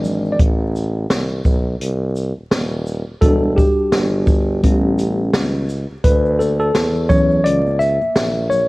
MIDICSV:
0, 0, Header, 1, 4, 480
1, 0, Start_track
1, 0, Tempo, 705882
1, 267, Time_signature, 4, 2, 24, 8
1, 5904, End_track
2, 0, Start_track
2, 0, Title_t, "Tine electric piano"
2, 0, Program_c, 0, 4
2, 0, Note_on_c, 0, 52, 57
2, 0, Note_on_c, 0, 56, 53
2, 0, Note_on_c, 0, 62, 65
2, 0, Note_on_c, 0, 74, 91
2, 212, Note_off_c, 0, 74, 0
2, 220, Note_on_c, 0, 74, 79
2, 238, Note_off_c, 0, 52, 0
2, 240, Note_off_c, 0, 56, 0
2, 242, Note_off_c, 0, 62, 0
2, 262, Note_off_c, 0, 74, 0
2, 2184, Note_on_c, 0, 69, 94
2, 2188, Note_on_c, 0, 66, 56
2, 2192, Note_on_c, 0, 55, 45
2, 2196, Note_on_c, 0, 62, 59
2, 2423, Note_on_c, 0, 67, 74
2, 2432, Note_off_c, 0, 69, 0
2, 3120, Note_off_c, 0, 66, 0
2, 3122, Note_off_c, 0, 55, 0
2, 3124, Note_off_c, 0, 62, 0
2, 3148, Note_on_c, 0, 55, 50
2, 3151, Note_on_c, 0, 59, 46
2, 3155, Note_on_c, 0, 61, 56
2, 3838, Note_off_c, 0, 67, 0
2, 3840, Note_off_c, 0, 55, 0
2, 3842, Note_off_c, 0, 59, 0
2, 3844, Note_off_c, 0, 61, 0
2, 4106, Note_on_c, 0, 71, 83
2, 4347, Note_on_c, 0, 69, 79
2, 4354, Note_off_c, 0, 71, 0
2, 4477, Note_off_c, 0, 69, 0
2, 4485, Note_on_c, 0, 69, 79
2, 4821, Note_on_c, 0, 73, 90
2, 4824, Note_on_c, 0, 52, 58
2, 4829, Note_on_c, 0, 54, 50
2, 4832, Note_on_c, 0, 61, 61
2, 4835, Note_off_c, 0, 69, 0
2, 5059, Note_on_c, 0, 74, 99
2, 5071, Note_off_c, 0, 73, 0
2, 5162, Note_off_c, 0, 52, 0
2, 5164, Note_off_c, 0, 54, 0
2, 5167, Note_off_c, 0, 61, 0
2, 5298, Note_on_c, 0, 76, 104
2, 5310, Note_off_c, 0, 74, 0
2, 5755, Note_off_c, 0, 76, 0
2, 5778, Note_on_c, 0, 73, 86
2, 5904, Note_off_c, 0, 73, 0
2, 5904, End_track
3, 0, Start_track
3, 0, Title_t, "Tuba"
3, 0, Program_c, 1, 58
3, 0, Note_on_c, 1, 32, 87
3, 244, Note_off_c, 1, 32, 0
3, 270, Note_on_c, 1, 33, 102
3, 725, Note_off_c, 1, 33, 0
3, 750, Note_on_c, 1, 36, 83
3, 976, Note_off_c, 1, 36, 0
3, 988, Note_on_c, 1, 35, 90
3, 1215, Note_off_c, 1, 35, 0
3, 1227, Note_on_c, 1, 36, 95
3, 1591, Note_off_c, 1, 36, 0
3, 1612, Note_on_c, 1, 27, 42
3, 1650, Note_off_c, 1, 27, 0
3, 1709, Note_on_c, 1, 27, 84
3, 2072, Note_off_c, 1, 27, 0
3, 2093, Note_on_c, 1, 27, 46
3, 2131, Note_off_c, 1, 27, 0
3, 2190, Note_on_c, 1, 28, 99
3, 2480, Note_off_c, 1, 28, 0
3, 2672, Note_on_c, 1, 31, 98
3, 3126, Note_off_c, 1, 31, 0
3, 3157, Note_on_c, 1, 33, 102
3, 3608, Note_off_c, 1, 33, 0
3, 3630, Note_on_c, 1, 37, 88
3, 3992, Note_off_c, 1, 37, 0
3, 4016, Note_on_c, 1, 37, 46
3, 4053, Note_off_c, 1, 37, 0
3, 4109, Note_on_c, 1, 38, 109
3, 4564, Note_off_c, 1, 38, 0
3, 4590, Note_on_c, 1, 40, 96
3, 5044, Note_off_c, 1, 40, 0
3, 5070, Note_on_c, 1, 37, 98
3, 5432, Note_off_c, 1, 37, 0
3, 5453, Note_on_c, 1, 34, 47
3, 5491, Note_off_c, 1, 34, 0
3, 5549, Note_on_c, 1, 34, 85
3, 5904, Note_off_c, 1, 34, 0
3, 5904, End_track
4, 0, Start_track
4, 0, Title_t, "Drums"
4, 26, Note_on_c, 9, 64, 61
4, 26, Note_on_c, 9, 82, 46
4, 31, Note_off_c, 9, 82, 0
4, 31, Note_on_c, 9, 82, 47
4, 94, Note_off_c, 9, 64, 0
4, 99, Note_off_c, 9, 82, 0
4, 169, Note_on_c, 9, 82, 52
4, 237, Note_off_c, 9, 82, 0
4, 268, Note_on_c, 9, 42, 77
4, 269, Note_on_c, 9, 36, 106
4, 336, Note_off_c, 9, 42, 0
4, 337, Note_off_c, 9, 36, 0
4, 518, Note_on_c, 9, 82, 49
4, 586, Note_off_c, 9, 82, 0
4, 749, Note_on_c, 9, 38, 103
4, 749, Note_on_c, 9, 42, 77
4, 817, Note_off_c, 9, 38, 0
4, 817, Note_off_c, 9, 42, 0
4, 986, Note_on_c, 9, 36, 79
4, 987, Note_on_c, 9, 82, 50
4, 1054, Note_off_c, 9, 36, 0
4, 1055, Note_off_c, 9, 82, 0
4, 1232, Note_on_c, 9, 42, 78
4, 1300, Note_off_c, 9, 42, 0
4, 1469, Note_on_c, 9, 82, 49
4, 1537, Note_off_c, 9, 82, 0
4, 1708, Note_on_c, 9, 38, 106
4, 1709, Note_on_c, 9, 42, 72
4, 1776, Note_off_c, 9, 38, 0
4, 1777, Note_off_c, 9, 42, 0
4, 1950, Note_on_c, 9, 82, 47
4, 2018, Note_off_c, 9, 82, 0
4, 2186, Note_on_c, 9, 42, 75
4, 2188, Note_on_c, 9, 36, 103
4, 2254, Note_off_c, 9, 42, 0
4, 2256, Note_off_c, 9, 36, 0
4, 2432, Note_on_c, 9, 36, 91
4, 2438, Note_on_c, 9, 82, 49
4, 2500, Note_off_c, 9, 36, 0
4, 2506, Note_off_c, 9, 82, 0
4, 2668, Note_on_c, 9, 38, 93
4, 2668, Note_on_c, 9, 42, 88
4, 2736, Note_off_c, 9, 38, 0
4, 2736, Note_off_c, 9, 42, 0
4, 2906, Note_on_c, 9, 36, 90
4, 2906, Note_on_c, 9, 82, 52
4, 2974, Note_off_c, 9, 36, 0
4, 2974, Note_off_c, 9, 82, 0
4, 3151, Note_on_c, 9, 42, 78
4, 3154, Note_on_c, 9, 36, 80
4, 3219, Note_off_c, 9, 42, 0
4, 3222, Note_off_c, 9, 36, 0
4, 3390, Note_on_c, 9, 42, 51
4, 3390, Note_on_c, 9, 82, 52
4, 3458, Note_off_c, 9, 42, 0
4, 3458, Note_off_c, 9, 82, 0
4, 3628, Note_on_c, 9, 38, 110
4, 3629, Note_on_c, 9, 42, 68
4, 3696, Note_off_c, 9, 38, 0
4, 3697, Note_off_c, 9, 42, 0
4, 3872, Note_on_c, 9, 82, 48
4, 3940, Note_off_c, 9, 82, 0
4, 4106, Note_on_c, 9, 42, 81
4, 4108, Note_on_c, 9, 36, 99
4, 4110, Note_on_c, 9, 82, 64
4, 4174, Note_off_c, 9, 42, 0
4, 4176, Note_off_c, 9, 36, 0
4, 4178, Note_off_c, 9, 82, 0
4, 4253, Note_on_c, 9, 82, 43
4, 4321, Note_off_c, 9, 82, 0
4, 4352, Note_on_c, 9, 63, 50
4, 4352, Note_on_c, 9, 82, 46
4, 4359, Note_off_c, 9, 82, 0
4, 4359, Note_on_c, 9, 82, 52
4, 4420, Note_off_c, 9, 63, 0
4, 4427, Note_off_c, 9, 82, 0
4, 4494, Note_on_c, 9, 82, 44
4, 4562, Note_off_c, 9, 82, 0
4, 4588, Note_on_c, 9, 38, 91
4, 4588, Note_on_c, 9, 42, 84
4, 4596, Note_on_c, 9, 82, 66
4, 4656, Note_off_c, 9, 38, 0
4, 4656, Note_off_c, 9, 42, 0
4, 4664, Note_off_c, 9, 82, 0
4, 4735, Note_on_c, 9, 82, 46
4, 4803, Note_off_c, 9, 82, 0
4, 4825, Note_on_c, 9, 36, 89
4, 4827, Note_on_c, 9, 82, 54
4, 4832, Note_off_c, 9, 82, 0
4, 4832, Note_on_c, 9, 64, 63
4, 4832, Note_on_c, 9, 82, 44
4, 4893, Note_off_c, 9, 36, 0
4, 4900, Note_off_c, 9, 64, 0
4, 4900, Note_off_c, 9, 82, 0
4, 4970, Note_on_c, 9, 82, 48
4, 5038, Note_off_c, 9, 82, 0
4, 5070, Note_on_c, 9, 42, 84
4, 5073, Note_on_c, 9, 82, 66
4, 5138, Note_off_c, 9, 42, 0
4, 5141, Note_off_c, 9, 82, 0
4, 5212, Note_on_c, 9, 63, 57
4, 5212, Note_on_c, 9, 82, 40
4, 5280, Note_off_c, 9, 63, 0
4, 5280, Note_off_c, 9, 82, 0
4, 5307, Note_on_c, 9, 63, 37
4, 5307, Note_on_c, 9, 82, 38
4, 5309, Note_off_c, 9, 82, 0
4, 5309, Note_on_c, 9, 82, 52
4, 5375, Note_off_c, 9, 63, 0
4, 5377, Note_off_c, 9, 82, 0
4, 5450, Note_on_c, 9, 63, 59
4, 5450, Note_on_c, 9, 82, 45
4, 5518, Note_off_c, 9, 63, 0
4, 5518, Note_off_c, 9, 82, 0
4, 5544, Note_on_c, 9, 82, 61
4, 5546, Note_on_c, 9, 38, 111
4, 5547, Note_on_c, 9, 42, 70
4, 5612, Note_off_c, 9, 82, 0
4, 5614, Note_off_c, 9, 38, 0
4, 5615, Note_off_c, 9, 42, 0
4, 5686, Note_on_c, 9, 82, 42
4, 5754, Note_off_c, 9, 82, 0
4, 5783, Note_on_c, 9, 64, 60
4, 5783, Note_on_c, 9, 82, 47
4, 5790, Note_off_c, 9, 82, 0
4, 5790, Note_on_c, 9, 82, 50
4, 5851, Note_off_c, 9, 64, 0
4, 5858, Note_off_c, 9, 82, 0
4, 5904, End_track
0, 0, End_of_file